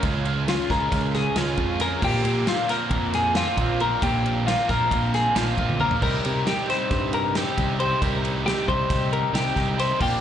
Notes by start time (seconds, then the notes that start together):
0.03 C#2 C#3 G#3 C#4 F4 G#4, kick, ride
0.25 C#4 F4 G#4, ride
0.48 C#3 G#3 C#4 F4 G#4, snare, ride
0.70 C#2 C#4 F4 G#4 A#4, kick, snare, ride
0.92 C#2, kick, snare, ride
1.14 G#4, snare, ride
1.36 C#2 G#3 C#4 F4 G#4, snare, ride
1.57 F2 C#4 F4 G#4, kick, ride
1.80 C#3 G#3 C#4 F4 G#4 A#4, snare, ride
2.02 A#1 A#2 F3 A#3 C4 F4 G4, kick, crash
2.24 A#2 A#3 C4 F4, ride
2.47 A#2 F3 A#3 C4 F4, snare, ride
2.69 A#3 C4 F4 A#4, snare, ride
2.90 F2, kick, ride
3.14 G#4, snare, ride
3.35 F3 A#3 C4 F4, snare, ride
3.57 A#1 A#3 C4 F4, kick, ride
3.80 A#2 F3 A#3 C4 F4 A#4, ride
4.02 A#1 A#2 F3 A#3 C4 F4 G4, kick, ride
4.25 A#3 C4 F4, ride
4.46 A#2 F3 A#3 C4 F4, snare, ride
4.68 A#1 A#3 C4 F4 A#4, kick, snare, ride
4.91 A#1, kick, ride
5.14 G#4, snare, ride
5.35 A#1 F3 A#3 C4 F4, snare, ride
5.57 A#1 A#3 C4 F4, kick, ride
5.69 high tom
5.79 A#2 F3 A#3 C4 F4 A#4, mid tom
5.91 floor tom
6.02 C2 C3 G3 C4 D#4 G4 A#4, kick, crash
6.24 C3 C4 D#4 G4, ride
6.46 C3 G3 C4 D#4 G4, snare, ride
6.69 C4 D#4 G4 C5, snare, ride
6.91 G2, kick, snare, ride
7.13 A#4, ride
7.35 G3 C4 D#4 G4, snare, ride
7.57 C2 C4 D#4 G4, kick, ride
7.80 C3 G3 C4 D#4 G4 C5, ride
8.02 C2 C3 G3 C4 D#4 G4 A#4, kick, ride
8.24 C4 D#4 G4, ride
8.46 C3 G3 C4 D#4 G4, snare, ride
8.67 C2 C4 D#4 G4 C5, kick, ride
8.90 C2, kick, snare, ride
9.13 A#4, ride
9.33 C2 G3 C4 D#4 G4, snare, ride
9.55 C2 C4 D#4 G4, kick, snare, ride
9.77 C3 G3 C4 D#4 G4 C5, snare, ride
9.99 A#1 A#2 F3 A#3 D4 F4 G4, kick, crash